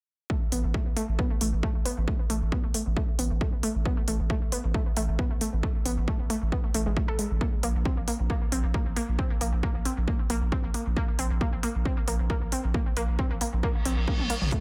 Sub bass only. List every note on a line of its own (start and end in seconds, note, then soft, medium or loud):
0.52 0.63 A1 medium
0.64 0.74 A1 medium
0.86 0.96 A1 medium
1.08 1.19 A1 medium
1.41 1.52 A1 loud
1.53 1.63 A1 medium
1.75 1.85 A1 medium
1.97 2.08 A1 medium
2.30 2.41 A1 medium
2.42 2.52 A1 medium
2.64 2.74 A1 medium
2.86 2.96 A1 medium
3.19 3.30 A1 loud
3.30 3.41 A1 medium
3.53 3.63 A1 medium
3.75 3.85 A1 medium
4.08 4.19 A1 loud
4.19 4.30 A1 medium
4.42 4.52 A1 medium
4.64 4.74 A1 medium
4.97 5.08 A1 loud
5.08 5.19 A1 medium
5.30 5.41 A1 medium
5.53 5.63 A1 medium
5.85 5.96 A1 medium
5.97 6.07 A1 medium
6.19 6.30 A1 medium
6.42 6.52 A1 medium
6.74 6.85 A1 loud
6.86 6.96 A1 medium
7.08 7.19 A1 medium
7.30 7.41 A1 medium
7.63 7.74 A#1 medium
7.75 7.85 A#1 medium
7.97 8.07 A#1 medium
8.19 8.30 A#1 medium
8.52 8.63 A#1 loud
8.64 8.74 A#1 medium
8.86 8.96 A#1 medium
9.08 9.19 A#1 medium
9.41 9.52 A#1 loud
9.53 9.63 A#1 medium
9.75 9.85 A#1 medium
9.97 10.07 A#1 medium
10.30 10.41 A#1 medium
10.41 10.52 A#1 medium
10.64 10.74 A#1 medium
10.86 10.96 A#1 medium
11.19 11.30 A#1 medium
11.30 11.41 A#1 medium
11.53 11.63 A#1 medium
11.75 11.85 A#1 medium
12.08 12.19 A#1 loud
12.19 12.30 A#1 medium
12.41 12.52 A#1 medium
12.64 12.74 A#1 medium
12.97 13.08 A#1 loud
13.08 13.19 A#1 medium
13.30 13.41 A#1 medium
13.53 13.63 A#1 medium
13.85 13.97 A#1 loud
13.97 14.07 A#1 medium
14.19 14.30 A#1 medium
14.42 14.52 A#1 medium